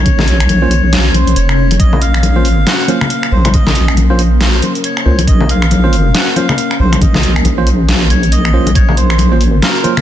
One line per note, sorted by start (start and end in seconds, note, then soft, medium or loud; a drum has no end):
0.00 0.48 A#1 loud
0.00 10.01 A#3 medium
0.00 10.01 C#4 medium
0.00 1.21 C#5 loud
0.00 1.78 C#5 loud
0.06 kick loud
0.06 closed hi-hat medium
0.19 snare soft
0.19 low conga medium
0.28 closed hi-hat medium
0.40 finger snap medium
0.40 closed hi-hat soft
0.49 1.35 A#1 loud
0.49 closed hi-hat medium
0.49 high conga medium
0.62 0.73 A#3 medium
0.62 0.73 C#4 medium
0.62 0.73 F4 medium
0.62 0.73 C5 loud
0.71 open hi-hat loud
0.93 snare loud
0.93 closed hi-hat medium
1.14 1.37 C5 loud
1.14 closed hi-hat medium
1.14 high conga medium
1.27 closed hi-hat soft
1.36 1.78 F1 loud
1.36 1.77 C#5 loud
1.36 closed hi-hat medium
1.49 finger snap medium
1.71 closed hi-hat medium
1.71 high conga medium
1.79 2.40 A#1 loud
1.79 8.74 A#4 loud
1.79 2.02 D#5 loud
1.79 kick loud
1.79 closed hi-hat medium
1.93 low conga medium
2.01 2.69 F5 loud
2.01 closed hi-hat medium
2.14 finger snap medium
2.23 closed hi-hat medium
2.23 high conga medium
2.36 2.65 A1 loud
2.36 2.46 A#3 medium
2.36 2.46 C#4 medium
2.36 2.46 F4 medium
2.36 2.46 C5 medium
2.45 open hi-hat loud
2.67 2.89 F#5 loud
2.67 snare loud
2.67 closed hi-hat medium
2.88 2.97 A#3 medium
2.88 2.97 C#4 medium
2.88 2.97 F4 medium
2.88 2.97 C5 loud
2.88 3.33 F5 loud
2.88 closed hi-hat medium
2.88 high conga medium
3.01 finger snap medium
3.01 low conga medium
3.10 closed hi-hat medium
3.23 finger snap medium
3.32 3.96 A#1 loud
3.32 3.54 C5 medium
3.45 finger snap soft
3.45 closed hi-hat medium
3.45 high conga medium
3.45 low conga loud
3.54 3.94 D#5 loud
3.54 kick loud
3.54 closed hi-hat medium
3.67 snare soft
3.67 low conga loud
3.75 closed hi-hat medium
3.88 finger snap medium
3.97 4.61 A#1 loud
3.97 closed hi-hat medium
3.97 high conga medium
4.10 4.20 A#3 medium
4.10 4.20 C#4 medium
4.10 4.20 F4 medium
4.10 4.20 C5 loud
4.19 open hi-hat loud
4.41 snare loud
4.41 closed hi-hat medium
4.62 4.72 C5 medium
4.62 closed hi-hat medium
4.62 high conga medium
4.75 closed hi-hat soft
4.84 5.25 C#5 medium
4.84 closed hi-hat medium
4.97 finger snap medium
5.06 5.26 C2 loud
5.06 5.20 A#3 medium
5.06 5.20 C#4 medium
5.06 5.20 F4 medium
5.06 5.20 C5 medium
5.19 closed hi-hat medium
5.19 high conga loud
5.27 6.13 A#1 loud
5.27 5.50 D#5 loud
5.27 kick loud
5.27 closed hi-hat medium
5.40 low conga loud
5.49 6.17 F5 loud
5.49 closed hi-hat medium
5.62 finger snap medium
5.71 closed hi-hat medium
5.71 high conga loud
5.84 5.94 A#3 medium
5.84 5.94 C#4 medium
5.84 5.94 F4 medium
5.84 5.94 C5 medium
5.93 open hi-hat loud
6.15 6.29 F#5 loud
6.15 snare loud
6.15 closed hi-hat medium
6.30 6.36 F#5 medium
6.36 6.45 A#3 loud
6.36 6.45 C#4 medium
6.36 6.45 F4 medium
6.36 6.45 C5 loud
6.36 6.77 F5 loud
6.36 closed hi-hat medium
6.36 high conga medium
6.49 finger snap medium
6.49 low conga medium
6.58 closed hi-hat medium
6.71 finger snap medium
6.80 7.44 A#1 loud
6.80 7.00 C5 medium
6.92 finger snap medium
6.92 closed hi-hat medium
6.92 high conga loud
6.92 low conga medium
7.01 7.42 D#5 loud
7.01 kick loud
7.01 closed hi-hat medium
7.14 snare soft
7.14 low conga loud
7.23 closed hi-hat medium
7.36 finger snap medium
7.45 8.74 A#1 loud
7.45 closed hi-hat medium
7.45 high conga medium
7.58 7.68 A#3 medium
7.58 7.68 C#4 medium
7.58 7.68 F4 medium
7.58 7.68 C5 loud
7.67 open hi-hat medium
7.89 snare loud
7.89 closed hi-hat medium
8.10 8.33 C#5 loud
8.10 closed hi-hat medium
8.10 high conga medium
8.23 closed hi-hat soft
8.32 8.72 D#5 loud
8.32 closed hi-hat medium
8.45 finger snap medium
8.54 8.68 A#3 medium
8.54 8.68 C#4 medium
8.54 8.68 F4 medium
8.54 8.68 C5 medium
8.66 closed hi-hat medium
8.66 high conga loud
8.75 9.35 A#1 loud
8.75 10.01 A#4 loud
8.75 8.96 C#5 loud
8.75 kick loud
8.75 closed hi-hat medium
8.89 low conga loud
8.97 9.38 C5 medium
8.97 closed hi-hat medium
9.10 finger snap medium
9.18 closed hi-hat medium
9.18 high conga medium
9.32 9.61 A1 loud
9.32 9.42 A#3 medium
9.32 9.42 C#4 medium
9.32 9.42 F4 medium
9.32 9.42 C5 loud
9.41 open hi-hat medium
9.62 10.01 A#4 loud
9.62 snare loud
9.62 closed hi-hat medium
9.84 9.93 A#3 medium
9.84 9.93 C#4 medium
9.84 9.93 F4 medium
9.84 9.93 C5 loud
9.84 closed hi-hat medium
9.84 high conga medium
9.97 finger snap medium
9.97 low conga medium